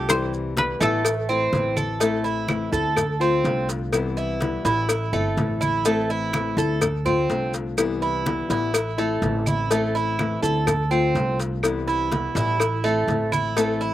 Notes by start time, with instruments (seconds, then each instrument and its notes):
Already playing: upright bass C2, cuban tres G4
0.08 nylon-string guitar C3 E3 G3 E4, koto C5, cowbell, high conga, claves, maracas
0.33 high conga, maracas
0.57 nylon-string guitar E3 G3 B3 E4, koto B4, cowbell, high conga, maracas
0.81 upright bass A1, nylon-string guitar E3 G3 B3 E4, cuban tres A3, koto A4, cowbell, high conga, maracas
1.05 muted nylon-string guitar stroke, cowbell, high conga, claves, maracas
1.29 nylon-string guitar A3 C4 E4, cuban tres C4, high conga, maracas
1.52 upright bass A1, nylon-string guitar E3 A3 C4 E4, cowbell, high conga, maracas
1.77 cuban tres A4, high conga, claves, maracas
2.00 nylon-string guitar E3 A3 C4 E4, cuban tres A3, cowbell, high conga, maracas
2.24 cuban tres E4, high conga, maracas
2.48 nylon-string guitar E3 A3 C4 E4, cowbell, high conga, claves, maracas
2.72 upright bass D2, nylon-string guitar A3 C4 E4, cuban tres A4, high conga, maracas
2.96 muted nylon-string guitar stroke, cowbell, high conga, low conga, claves, maracas
3.20 nylon-string guitar A3 C4 F4, cuban tres C4, high conga, maracas
3.44 upright bass C2, nylon-string guitar D3 A3 C4 F4, cowbell, high conga, maracas
3.69 cowbell, high conga, maracas
3.93 nylon-string guitar C3 E3 G3 B3 E4, cowbell, claves, maracas
4.17 cuban tres E4, high conga, maracas
4.41 nylon-string guitar E3 G3 B3 E4, cowbell, high conga, maracas
4.65 upright bass A1, nylon-string guitar E3 G3 B3 E4, cuban tres E4, cowbell, maracas
4.89 muted nylon-string guitar stroke, cowbell, high conga, claves, maracas
5.13 upright bass G1, cuban tres A3, nylon-string guitar A3 C4 E4, high conga, maracas
5.37 upright bass A1, nylon-string guitar E3 A3 C4 E4, cowbell, high conga, maracas
5.61 cuban tres E4, high conga, claves, maracas
5.85 nylon-string guitar E3 A3 C4 E4, cuban tres A3, cowbell, maracas
6.10 cuban tres E4, high conga, maracas
6.33 nylon-string guitar E3 A3 C4 E4, cowbell, high conga, claves, maracas
6.57 upright bass D2, nylon-string guitar A3 C4 E4, cuban tres A4, maracas
6.82 muted nylon-string guitar stroke, cowbell, high conga, low conga, claves, maracas
7.05 nylon-string guitar A3 C4 F4, cuban tres C4, high conga, low conga, maracas
7.29 upright bass C2, nylon-string guitar D3 A3 C4 F4, cowbell, high conga, maracas
7.54 cowbell, high conga, maracas
7.77 nylon-string guitar C3 E3 G3 B3 E4, cowbell, high conga, claves, maracas
8.02 cuban tres E4, high conga, maracas
8.25 nylon-string guitar E3 G3 B3 E4, cowbell, high conga, maracas
8.49 upright bass A1, nylon-string guitar E3 G3 B3 E4, cuban tres E4, cowbell, high conga, maracas
8.74 muted nylon-string guitar stroke, cowbell, high conga, claves, maracas
8.98 cuban tres A3, nylon-string guitar A3 C4 E4, high conga, maracas
9.22 upright bass A1, nylon-string guitar E3 A3 C4 E4, cowbell, high conga, maracas
9.46 cuban tres E4, high conga, claves, maracas
9.71 nylon-string guitar E3 A3 C4 E4, cuban tres A3, cowbell, high conga, maracas
9.95 cuban tres E4, high conga, maracas
10.19 nylon-string guitar E3 A3 C4 E4, cowbell, high conga, claves, maracas
10.43 upright bass D2, nylon-string guitar A3 C4 E4, cuban tres A4, high conga, maracas
10.67 muted nylon-string guitar stroke, cowbell, high conga, low conga, claves, maracas
10.91 nylon-string guitar A3 C4 F4, cuban tres C4, maracas
11.15 upright bass C2, nylon-string guitar D3 A3 C4 F4, cowbell, high conga, maracas
11.40 cowbell, high conga, maracas
11.63 nylon-string guitar C3 E3 G3 B3 E4, cowbell, high conga, claves, maracas
11.88 cuban tres E4, high conga, maracas
12.11 nylon-string guitar E3 G3 B3 E4, cowbell, high conga, maracas
12.35 upright bass A1, nylon-string guitar E3 G3 B3 E4, cuban tres E4, cowbell, high conga, maracas
12.60 muted nylon-string guitar stroke, cowbell, high conga, claves, maracas
12.84 cuban tres A3, nylon-string guitar A3 C4 E4, high conga, maracas
13.08 upright bass A1, nylon-string guitar E3 A3 C4 E4, cowbell, high conga, maracas
13.32 cuban tres E4, high conga, claves, maracas
13.56 nylon-string guitar E3 A3 C4 E4, cuban tres A3, cowbell, maracas
13.81 cuban tres E4, high conga, maracas